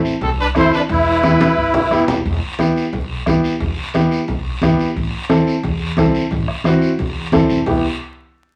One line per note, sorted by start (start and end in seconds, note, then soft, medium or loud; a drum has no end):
0.00 0.12 C4 medium
0.00 0.12 E4 medium
0.00 0.12 A4 medium
0.05 short guiro medium
0.21 0.49 C2 medium
0.21 0.30 C4 medium
0.21 0.30 A4 medium
0.21 bombo low medium
0.21 high conga soft
0.21 low conga medium
0.21 long guiro medium
0.40 0.47 D4 medium
0.40 0.48 B4 medium
0.55 0.69 F#1 medium
0.55 0.79 C4 medium
0.55 0.80 E4 medium
0.55 0.72 E4 loud
0.55 0.80 A4 medium
0.55 0.72 C5 medium
0.55 bombo low medium
0.55 bombo rim medium
0.55 high conga medium
0.55 short guiro medium
0.73 0.81 D4 loud
0.73 0.82 B4 medium
0.73 short guiro medium
0.89 1.44 E1 loud
0.89 2.05 E4 loud
0.89 2.05 B4 medium
0.89 bombo low medium
0.89 high conga soft
0.89 long guiro medium
1.23 1.47 B3 medium
1.23 1.47 E4 medium
1.23 1.48 G4 medium
1.23 bombo rim medium
1.23 high conga loud
1.23 short guiro medium
1.40 high conga loud
1.40 short guiro medium
1.57 1.85 G1 medium
1.57 bombo low medium
1.57 long guiro medium
1.74 low conga medium
1.90 2.06 F#1 medium
1.90 2.15 B3 medium
1.90 2.15 E4 medium
1.90 2.16 G4 loud
1.90 bombo rim medium
1.90 short guiro medium
2.08 2.23 E1 medium
2.08 low conga medium
2.08 short guiro medium
2.25 2.39 E1 loud
2.25 bombo low medium
2.25 high conga soft
2.25 long guiro medium
2.59 2.83 B3 medium
2.59 2.83 E4 medium
2.59 2.83 G4 medium
2.59 bombo rim medium
2.59 high conga medium
2.59 short guiro medium
2.76 short guiro medium
2.93 3.20 B1 medium
2.93 bombo low medium
2.93 high conga soft
2.93 low conga medium
2.93 long guiro medium
3.26 3.40 G1 medium
3.26 3.51 B3 medium
3.26 3.51 E4 medium
3.26 3.51 G4 loud
3.26 bombo low medium
3.26 bombo rim medium
3.26 high conga medium
3.26 short guiro medium
3.44 short guiro medium
3.60 3.74 E1 medium
3.60 bombo low medium
3.60 high conga soft
3.60 low conga medium
3.60 long guiro medium
3.94 4.18 B3 medium
3.94 4.18 E4 medium
3.94 4.18 G4 loud
3.94 bombo rim medium
3.94 high conga medium
3.94 short guiro medium
4.11 short guiro medium
4.28 4.56 B1 medium
4.28 bombo low medium
4.28 high conga soft
4.28 low conga medium
4.28 long guiro medium
4.61 4.76 G1 medium
4.61 4.86 B3 medium
4.61 4.86 E4 medium
4.61 4.87 G4 loud
4.61 bombo low medium
4.61 bombo rim medium
4.61 high conga medium
4.61 short guiro medium
4.79 short guiro medium
4.96 5.10 A1 loud
4.96 bombo low medium
4.96 high conga soft
4.96 long guiro medium
5.29 5.53 C4 medium
5.29 5.53 E4 medium
5.29 5.54 A4 loud
5.29 bombo rim medium
5.29 high conga medium
5.29 short guiro medium
5.47 short guiro medium
5.63 5.91 E2 loud
5.63 bombo low medium
5.63 high conga soft
5.63 low conga medium
5.63 long guiro medium
5.97 6.11 C2 medium
5.97 6.22 C4 medium
5.97 6.22 E4 medium
5.97 6.22 A4 loud
5.97 bombo low medium
5.97 bombo rim medium
5.97 high conga medium
5.97 short guiro medium
6.14 short guiro medium
6.31 6.45 A1 loud
6.31 bombo low medium
6.31 high conga soft
6.31 low conga medium
6.31 long guiro medium
6.48 bombo rim medium
6.64 6.89 C4 medium
6.64 6.90 E4 medium
6.64 6.90 F#4 loud
6.64 bombo rim medium
6.64 high conga medium
6.64 short guiro medium
6.81 short guiro medium
6.99 7.26 E2 medium
6.99 bombo low medium
6.99 high conga soft
6.99 low conga medium
6.99 long guiro medium
7.32 7.48 F#1 medium
7.32 7.57 C4 medium
7.32 7.57 E4 medium
7.32 7.57 A4 loud
7.32 bombo low medium
7.32 bombo rim medium
7.32 high conga medium
7.32 short guiro medium
7.50 7.65 E1 medium
7.50 short guiro medium
7.66 7.83 E2 loud
7.66 7.83 B3 medium
7.66 7.83 E4 medium
7.66 7.83 G4 medium
7.66 bombo low loud
7.66 low conga loud
7.66 long guiro loud